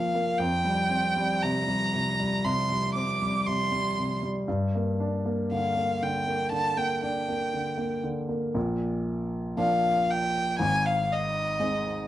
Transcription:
Already playing: A#2 F3 A#3 D4 F5
0.15 A#3
0.39 F2 G5
0.65 G3
0.90 C4
1.16 G3
1.42 C3 A#5
1.67 G3
1.94 C3
2.20 G3
2.44 C3 C6
2.70 G3
2.95 C4 D6
3.22 G3
3.46 C3 C6
3.72 G3
3.98 C3
4.23 G3
4.48 G2
4.75 A#3
5.00 D4
5.26 A#3
5.52 D3 F5
5.77 A#3
6.02 D3 G5
6.26 A#3
6.52 D3 A5
6.77 A#3 G5
7.02 D4 G5
7.29 A#3
7.53 D3
7.78 A#3
8.03 D3
8.29 A#3
8.54 A#1 A#2
9.57 F3 A#3 D4 F5
10.11 G5
10.59 G#1 G#2 G#5
10.86 F5
11.12 D#5
11.60 G#3 C4 D#4

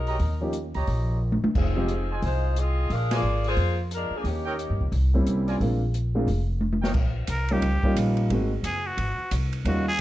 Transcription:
Already playing: B1 G#3 D#4 F#4 A#4
0.07 G4 C#5 D#5 A#5, open hi-hat
0.19 D#2, kick, open hi-hat
0.41 F3 A#3 C#4 D#4 G4
0.53 closed hi-hat
0.74 C#2 G4 C#5 D#5 A#5, open hi-hat
0.87 A#1, kick, open hi-hat
1.32 high tom
1.43 muted upright bass stroke, high tom
1.55 F1 F3 C4 D#4 G#4, kick, crash
1.76 F3 G#3 C4 D#4 G4
1.88 closed hi-hat
2.10 F4 C5 D#5 G#5
2.22 C2 G#3 D#4 F4 C5, kick, open hi-hat
2.56 C4 F4 G#4 D#5, closed hi-hat
2.90 A#1 D4 G#4 A#4 F5, kick, open hi-hat
3.10 A#3 F4 A#4 D5 G#5, snare, ride
3.14 F4 G#4
3.22 G#1
3.44 A#3 F4 G#4 C5, open hi-hat
3.57 F2, kick, open hi-hat
3.91 G#3 D4 F4 A#4, closed hi-hat
4.10 muted upright bass stroke
4.16 F3 A#3 D4 G#4
4.24 D#2 C#4 G4, kick, open hi-hat
4.28 D#3 A#3
4.45 D#4 A#4 C#5 G5
4.59 closed hi-hat
4.70 G2
4.81 C#2
4.92 C2, kick, open hi-hat
5.14 G3 A#3 C4 C#4 E4
5.26 C2, closed hi-hat
5.47 F4 A#4 D5 G#5, open hi-hat
5.60 A#1 G#3 A#3 C4 D4 F4, kick, open hi-hat
5.94 closed hi-hat
6.15 G#3 A#3 C4 D4 F4
6.27 F1, kick, open hi-hat
6.61 high tom
6.73 high tom
6.82 D#4 A#4 C#5 G5, snare
6.94 A#1, kick, crash
7.27 C2 A#4, kick, hi-hat pedal, ride
7.49 G3 A#3 C#4 D#4 F4 G4, ride
7.62 C#2, kick, ride
7.83 G3 A#3 C#4 D#4 F4, muted upright bass stroke, kick
7.96 A#1, hi-hat pedal, ride
8.17 ride
8.30 G#1 G#3 A#3 C4 D#4 F#4, kick, ride
8.63 F#1 G#4, kick, hi-hat pedal, ride
8.87 F#4
8.97 G#1, kick, ride
9.18 muted upright bass stroke
9.31 C2, kick, hi-hat pedal, ride
9.53 ride
9.65 D#2 G3 A#3 C#4 D#4 F4 F#4, kick, ride
9.88 G#4

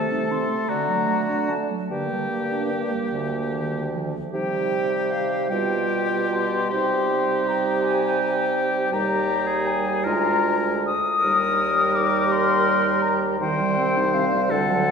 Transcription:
Already playing: C3 A3 C4 A4 A5
0.12 D#4
0.31 C4 C6
0.49 A3
0.68 D3 F#4 A#5
0.89 F#3
1.08 A3
1.29 D4
1.49 A3 A5
1.70 F#3
1.89 G2 D3 A#3 G4 G5
2.11 G3
2.30 A#3
2.52 D4
2.72 A#3
2.92 G3
3.12 D2 D3
3.52 D#3
3.95 F3
4.33 C3 G3 D#4 G4 G5
5.11 F5
5.50 B2 G3 F4 G4 G5
6.33 C6
6.69 C3 G3 D#4 G4
7.48 A#5
7.83 G#5
8.58 G5
8.92 D#2 G3 D#4 G4 A#5
9.47 G#4
9.67 G#5
10.05 D2 G#3 F4 A#4 A#5
10.86 D#6
11.19 G3 D#4 A#4
11.23 D#2
11.95 D6
12.32 C6
13.02 A#5
13.40 C2 D#3 G3 C5 G5
13.61 G3
13.78 C4
13.97 D#4
14.14 C4 F5
14.34 G3
14.50 D2 D3 A4 F#5
14.72 F#3

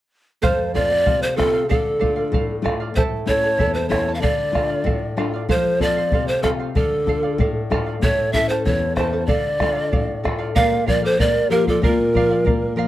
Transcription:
0.42 F2 A4 C5 F5, bombo low
0.74 A3 C4 F4 A4 C5 D5 F5, bombo low
0.90 C5 F5
1.05 C3 A4 C5 F5, bombo low
1.23 C5
1.36 A3 C4 F4 A4 C5 F5, bombo rim, bombo low
1.53 C5 F5
1.69 D3 A4 D5 F5, bombo low
1.99 A3 D4 F4 A4 D5 F5, bombo low
2.16 D5 F5
2.32 A2 A4 D5 F5, bombo low
2.62 A3 D4 F4 A4 D5 F5, bombo rim, bombo low
2.80 D5 F5
2.94 A2 E4 A4 C5 E5 A5, bombo low
3.26 A3 C#4 E4 C#5 E5, bombo low
3.30 A4 A5
3.44 E4 A4 A5
3.58 E2 E4 A4 E5 A5, bombo low
3.74 C5
3.89 A3 C#4 E4 A4 C#5 E5 A5, bombo rim, bombo low
4.08 E4 A4 A5
4.15 F5
4.20 D3 A4 D5 F5, bombo low
4.52 A3 D4 F4 A4 D5 F5, bombo rim, bombo low
4.69 D5 F5
4.84 A2 A4 D5 F5, bombo low
5.17 A3 D4 F4 A4 D5 F5, bombo rim
5.33 D5 F5
5.49 F3 A4 C5 F5, bombo low
5.80 C4 F4 A4 C5 D5 F5, bombo low
5.96 C5 F5
6.12 C3 A4 C5 F5, bombo low
6.28 C5
6.43 C4 F4 A4 C5 F5, bombo rim, bombo low
6.59 C5 F5
6.75 D3 A4 D5 F5, bombo low
7.06 D4 F4 A4 D5 F5, bombo low
7.23 D5 F5
7.38 A2 A4 D5 F5, bombo low
7.70 D4 F4 A4 D5 F5, bombo rim, bombo low
7.86 D5 F5
8.01 A2 E4 A4 C#5 E5 A5, bombo low
8.33 C#4 E4 A4 E5 A5, bombo low
8.49 E4 A4 C5 A5
8.65 E2 E4 A4 C#5 E5 A5, bombo low
8.96 C#4 E4 A4 C5 E5 A5, bombo rim, bombo low
9.13 E4 A4 A5
9.27 D3 A4 D5 F5, bombo low
9.60 D4 F4 A4 D5 F5, bombo rim, bombo low
9.75 D5 F5
9.92 A2 A4 D5 F5, bombo low
10.23 D4 F4 A4 D5 F5, bombo rim, bombo low
10.39 D5 F5
10.55 A#2 A#4 D5 F5, bombo low
10.86 F3 A#4 D5 F5, bombo low
11.03 A4 C5 D5 F5
11.19 A#3 A#4 D5 F5, bombo low
11.50 F3 G4 A#4 D5 F5
11.67 F4 A4 D5 F5, bombo low
11.82 A#2 F4 A#4 D5 F5, bombo low
12.14 F3 A#4 D5 F5, bombo low
12.30 D5 F5
12.45 A#3 A#4 D5 F5, bombo low
12.76 F3 A#4 D5 F5

